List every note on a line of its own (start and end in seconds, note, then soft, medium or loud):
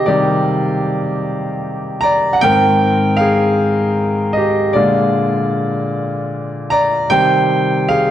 0.00 0.07 C3 soft
0.00 0.08 D#3 soft
0.00 0.09 G4 medium
0.00 2.44 G#4 medium
0.00 2.43 D#5 medium
0.00 2.44 F5 medium
0.06 0.59 C3 medium
0.06 0.60 D#3 medium
0.06 0.60 G3 medium
0.06 0.92 G4 medium
0.06 0.91 D5 medium
2.01 2.33 D5 medium
2.01 2.34 A#5 loud
2.33 2.41 F#5 medium
2.41 3.54 G#2 medium
2.41 3.55 D#3 medium
2.41 3.55 C4 medium
2.41 3.16 A#4 loud
2.41 3.21 G5 loud
3.17 4.31 F5 loud
3.21 4.33 G#4 medium
4.33 4.74 D#5 medium
4.37 4.73 G4 medium
4.73 7.06 A#2 medium
4.73 7.06 D3 medium
4.73 7.07 G#3 medium
4.73 5.59 F4 medium
4.73 5.57 D5 medium
6.70 7.08 D5 medium
6.70 7.11 A#5 loud
7.10 7.62 C3 medium
7.10 7.63 D#3 medium
7.10 7.63 G3 medium
7.10 7.85 C5 medium
7.10 7.91 G5 loud
7.89 8.11 G#4 medium
7.89 8.11 F5 loud